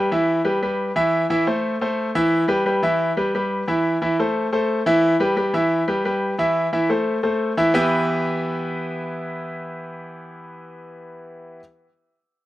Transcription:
0.12 0.39 E3 medium
0.12 0.39 E4 medium
0.12 0.39 E5 medium
0.45 0.59 G3 medium
0.45 0.59 G4 medium
0.45 0.59 B4 medium
0.62 0.90 G3 medium
0.62 0.90 G4 medium
0.62 0.90 B4 medium
0.96 1.24 E3 medium
0.96 1.24 E4 medium
0.96 1.24 E5 loud
1.30 1.44 E3 medium
1.30 1.44 E4 medium
1.30 1.44 E5 medium
1.47 1.75 A3 medium
1.47 1.75 A4 medium
1.47 1.75 C5 medium
1.81 2.09 A3 medium
1.81 2.09 A4 medium
1.81 2.09 C5 medium
2.15 2.43 E3 loud
2.15 2.43 E4 medium
2.15 2.43 E5 loud
2.48 2.62 G3 medium
2.48 2.62 G4 medium
2.48 2.62 B4 medium
2.66 2.79 G3 medium
2.66 2.80 G4 medium
2.66 2.80 B4 medium
2.83 3.10 E3 medium
2.83 3.11 E4 medium
2.83 3.11 E5 medium
3.17 3.31 G3 medium
3.17 3.31 G4 medium
3.17 3.31 B4 medium
3.35 3.62 G3 medium
3.35 3.62 G4 medium
3.35 3.62 B4 medium
3.68 3.95 E3 medium
3.68 3.95 E4 medium
3.68 3.96 E5 medium
4.02 4.15 E3 medium
4.02 4.16 E4 medium
4.02 4.16 E5 medium
4.19 4.47 A3 medium
4.19 4.47 A4 medium
4.19 4.47 C5 medium
4.52 4.80 A3 medium
4.52 4.80 A4 medium
4.52 4.80 C5 medium
4.86 5.14 E3 loud
4.86 5.14 E4 loud
4.86 5.14 E5 medium
5.20 5.34 G3 medium
5.20 5.34 G4 medium
5.20 5.34 B4 medium
5.36 5.51 G3 medium
5.36 5.51 G4 medium
5.36 5.51 B4 medium
5.54 5.81 E3 medium
5.54 5.82 E4 medium
5.54 5.82 E5 medium
5.88 6.02 G3 medium
5.88 6.02 G4 medium
5.88 6.02 B4 medium
6.05 6.33 G3 medium
6.05 6.33 G4 medium
6.05 6.33 B4 medium
6.38 6.66 E3 medium
6.38 6.67 E4 medium
6.38 6.67 E5 loud
6.73 6.87 E3 medium
6.73 6.87 E4 medium
6.73 6.87 E5 medium
6.89 7.17 A3 medium
6.89 7.18 A4 medium
6.89 7.18 C5 medium
7.23 7.51 A3 medium
7.23 7.51 A4 medium
7.23 7.51 C5 medium
7.57 7.71 E3 loud
7.57 7.72 E4 medium
7.57 7.72 E5 loud
7.74 11.59 E3 loud
7.74 11.59 B3 medium
7.74 11.60 E4 medium
7.74 11.60 G4 medium
7.74 11.60 B4 medium
7.74 11.60 E5 loud

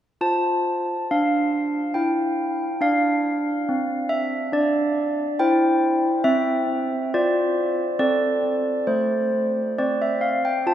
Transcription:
0.21 0.91 F4 soft
0.21 2.78 C5 soft
0.21 1.05 A5 medium
1.11 1.79 D4 soft
1.11 1.93 F5 medium
1.94 2.65 E4 soft
1.94 2.78 G5 medium
2.81 3.50 D4 soft
2.81 4.52 D5 soft
2.81 4.06 F5 medium
3.69 4.37 C4 soft
4.09 4.51 E5 medium
4.52 5.22 D4 soft
4.52 5.37 D5 medium
5.39 6.09 E4 medium
5.39 7.09 C5 soft
5.39 6.22 G5 medium
6.24 6.94 C4 medium
6.24 7.08 E5 medium
7.14 7.84 F4 medium
7.14 7.97 C5 soft
7.14 7.98 D5 medium
7.99 8.71 C4 medium
7.99 9.74 A4 soft
7.99 8.85 D5 medium
8.87 9.59 A3 soft
8.87 9.73 C5 medium
9.78 10.49 C4 soft
9.78 10.63 C5 soft
9.78 10.01 D5 medium
10.02 10.23 E5 medium
10.21 10.44 F5 medium
10.45 10.67 G5 medium
10.66 10.74 F4 medium
10.66 10.74 C5 soft
10.66 10.74 A5 medium

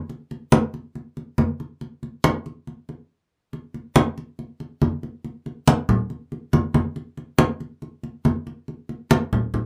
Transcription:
0.09 high conga soft
0.31 high conga soft
0.52 high conga medium
0.74 high conga soft
0.95 high conga soft
1.17 high conga soft
1.38 high conga medium
1.60 high conga soft
1.81 high conga soft
2.03 high conga soft
2.24 high conga medium
2.46 high conga soft
2.67 high conga soft
2.89 high conga soft
3.53 high conga soft
3.74 high conga soft
3.96 high conga loud
4.18 high conga soft
4.39 high conga soft
4.60 high conga soft
4.82 high conga medium
5.03 high conga soft
5.25 high conga soft
5.46 high conga soft
5.68 high conga medium
5.89 high conga soft
5.89 low conga medium
6.10 high conga soft
6.32 high conga soft
6.53 high conga medium
6.74 high conga medium
6.96 high conga soft
7.17 high conga soft
7.38 high conga medium
7.60 high conga soft
7.82 high conga soft
8.03 high conga soft
8.25 high conga medium
8.47 high conga soft
8.68 high conga soft
8.89 high conga soft
9.11 high conga medium
9.33 high conga soft
9.33 low conga medium
9.54 high conga soft
9.54 low conga medium

